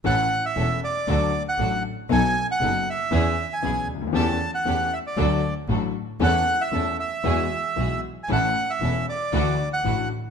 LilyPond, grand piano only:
\new Staff \with { instrumentName = "Grand piano" } { \clef bass \time 4/4 \key a \major \tempo 4 = 116 <a,, a, e a cis' a'>8 r8 <e,, e, e a cis' a'>8 r8 <d, d fis a d' a'>8 r8 <a,, a, fis a d' a'>8 r8 | <b,, b, fis b dis' a'>8 r8 <fis,, fis, fis b dis' a'>8 r8 <e, e b cis' gis'>8 r8 <b,, b, e b cis' gis'>8 r32 cis,32 d,32 dis,32 | <e, e a cis' g'>8 r8 <e, e a cis' g'>8 r8 <d, d fis a d' a'>8 r8 <a,, a, fis a d' a'>8 r8 | <e, e a cis' a'>8 r8 <e, e a cis' a'>8 r8 <e, e gis b fis'>8 r8 <b,, b, e gis b fis'>8 r8 |
<a,, a, e a cis' a'>8 r8 <e,, e, e a cis' a'>8 r8 <d, d e a d' fis'>8 r8 <a,, a, e a d' fis'>8 r8 | }